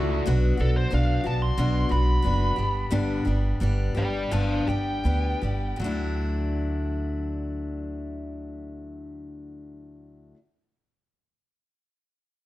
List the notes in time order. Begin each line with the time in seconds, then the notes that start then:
Already playing: C#2 D3 A3 D4 E4 F#4
0.10 A3 D4 F#4
0.26 B1 B2 F#3 B3 D4 F#4
0.57 B1 B3 D4 F#4 A4
0.77 C5
0.90 B1 F#3 B3 D4 F#4 F5
1.24 B1 B3 D4 F#4 A5
1.42 C6
1.58 B1 B2 F#3 B3 D4 F#4
1.89 B1 B3 D4 F#4 B5
2.22 F#1 F#3 B3 D4 F#4
2.56 G1 G3 B3 D4 G4
2.91 G1 G2 D3 G3 B3 D4 G4
3.25 G1 G3 B3 D4 G4
3.60 G1 G3 B3 D4 G4
3.95 G1 G3 B3 D4 G4 D5 G5
4.31 G1 G2 D3 G3 B3 D4 G4 F5 A5
4.67 G1 G3 B3 D4 G4 G5
5.04 D2 G3 B3 D4 G4
5.42 G1 G3 B3 D4 G4
5.76 D2 D3 F#3
5.82 A3 D4
5.86 E4